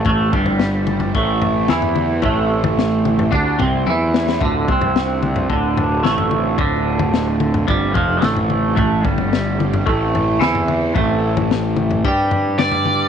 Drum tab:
SD |----o-------o---|----o---------oo|----o-------o---|----o-------o---|
T1 |----------------|------------o---|----------------|----------------|
T2 |------o-----o-o-|---o--o---------|------o-----o-o-|---o--o-----o-o-|
FT |o--o---o--o--o--|o--o---o--o-----|o--o---o--o--o--|o--o---o--o--o--|
BD |o-o-----o-------|o-------o-o-----|o-o-----o-------|o-------o-o-----|

SD |----o-------o---|----o-------o---|
T1 |----------------|----------------|
T2 |------o-----o-o-|---o--o-----o-o-|
FT |o--o---o--o--o--|o--o---o--o--o--|
BD |o-o-----o-------|o-------o-------|